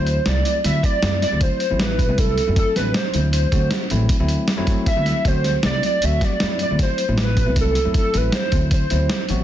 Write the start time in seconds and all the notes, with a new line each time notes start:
Already playing: D2 F#3 A3 C4 E4 C5
0.07 closed hi-hat
0.26 C2 F#3 A3 C4 E4 D5, snare, closed hi-hat
0.45 closed hi-hat
0.64 D2 F#3 A3 C4 E4 E5, snare, closed hi-hat
0.83 D5, kick, closed hi-hat
1.02 F#2 F#3 A3 C4 E4, snare, closed hi-hat
1.22 D5, snare, closed hi-hat
1.32 D2 F#3 A3 C4 E4
1.41 C5, kick, closed hi-hat
1.60 closed hi-hat
1.70 A1 F#3 A3 C4 E4
1.79 B4, snare, closed hi-hat
1.99 kick, closed hi-hat
2.09 C2 F#3 A3 C4 E4
2.18 A4, kick, closed hi-hat
2.38 closed hi-hat
2.46 F#2 F#3 A3 C4 E4
2.56 A4, kick, closed hi-hat
2.76 A1 F#3 A3 C4 D4 B4, snare, closed hi-hat
2.94 C5, snare, closed hi-hat
3.14 D2 F#3 A3 C4 E4, closed hi-hat
3.33 C5, closed hi-hat
3.52 D2 F#3 A3 C4 F#4, kick, closed hi-hat
3.71 snare, closed hi-hat
3.90 A1 F#3 A3 C4 E4, closed hi-hat
4.09 kick, closed hi-hat
4.20 D2 F#3 A3 C4 E4
4.28 closed hi-hat
4.48 snare, closed hi-hat
4.57 F#2 F#3 A3 C4 E4
4.67 kick, snare, closed hi-hat
4.86 E5, kick, closed hi-hat
4.96 D2 F#3 A3 C4 E4
5.06 snare, closed hi-hat
5.25 D2 F#3 A3 C4 F#4 C5, kick, closed hi-hat
5.44 snare, closed hi-hat
5.63 C2 F#3 A3 C4 E4 D5, snare, closed hi-hat
5.83 D5, closed hi-hat
6.02 D2 F#3 A3 C4 F#4 E5, closed hi-hat
6.21 D5, kick, snare, closed hi-hat
6.40 F#2 F#3 A3 C4 E4, snare, closed hi-hat
6.59 D5, closed hi-hat
6.70 D2 F#3 A3 C4 E4
6.79 C5, kick, snare, closed hi-hat
6.98 closed hi-hat
7.09 A1 F#3 A3 C4 E4
7.18 snare, closed hi-hat
7.22 B4
7.37 kick, closed hi-hat
7.46 C2 F#3 A3 C4 E4
7.56 kick, closed hi-hat
7.61 A4
7.75 closed hi-hat
7.85 F#2 F#3 A3 C4 E4
7.94 A4, kick, closed hi-hat
8.13 A1 F#3 A3 C4 E4 B4, closed hi-hat
8.32 C5, snare, closed hi-hat
8.52 D2 F#3 A3 C4 E4, kick, closed hi-hat
8.71 C5, kick, closed hi-hat
8.90 D2 F#3 A3 C4 E4, closed hi-hat
9.10 snare, closed hi-hat
9.29 A1 F#3 A3 C4 F#4, closed hi-hat